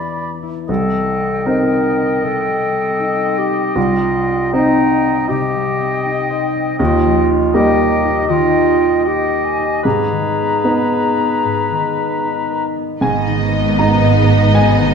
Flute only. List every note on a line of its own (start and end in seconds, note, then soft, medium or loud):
0.00 0.32 B5 soft
0.70 4.49 G5 soft
4.52 5.27 G5 soft
5.28 6.76 G5 medium
6.81 7.28 G5 soft
7.55 8.26 G5 medium
8.28 9.04 G5 soft
9.05 9.46 G5 soft
9.45 9.84 G#5 soft
9.85 12.65 A#5 soft